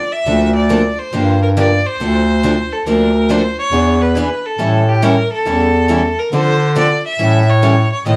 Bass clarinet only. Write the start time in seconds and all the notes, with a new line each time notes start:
0.27 D2
1.13 G2
1.99 D2
2.85 D2
3.72 E2
4.59 A2
5.45 E2
6.32 D3
7.19 A2
8.05 A2